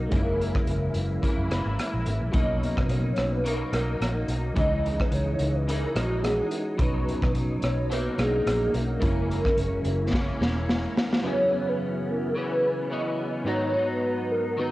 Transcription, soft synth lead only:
Already playing: A#4
2.35 D#5
2.78 B4
2.90 C#5
3.32 B4
3.45 A#4
3.73 A#4
4.58 D#5
5.00 B4
5.13 C#5
5.55 B4
5.68 A#4
5.96 F#4
6.24 G#4
6.80 B4
7.63 C#5
7.91 B4
8.19 G#4
8.75 A#4
11.25 C#5
11.68 B4
12.08 A#4
12.36 B4
12.92 D#5
13.47 C#5
13.90 B4
14.30 A#4
14.58 B4

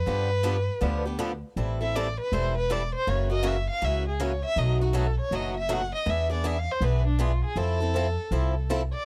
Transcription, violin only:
Already playing: B4
1.81 E5
1.96 D5
2.20 B4
2.34 C5
2.58 B4
2.72 D5
2.95 C5
3.09 C#5
3.33 D#5
3.47 E5
3.70 F5
3.85 E5
4.08 G#4
4.22 C#5
4.45 E5
4.59 D#5
4.83 F#4
4.96 A4
5.21 C#5
5.35 D#5
5.57 E5
5.72 F#5
5.95 D#5
6.10 E5
6.33 D5
6.47 E5
6.59 F5
6.72 C5
6.84 B4
7.07 D4
7.21 F4
7.45 G#4
7.58 A4
8.94 D5

